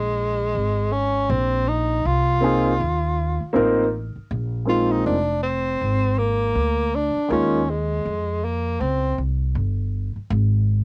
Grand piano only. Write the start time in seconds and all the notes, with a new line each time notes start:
2.40 A#3 C4 D#4 F4 G#4
3.53 A#3 C4 D#4 F4 A#4
4.65 G#3 A#3 C4 D#4 F4
7.28 G#3 A#3 C#4 D#4 F4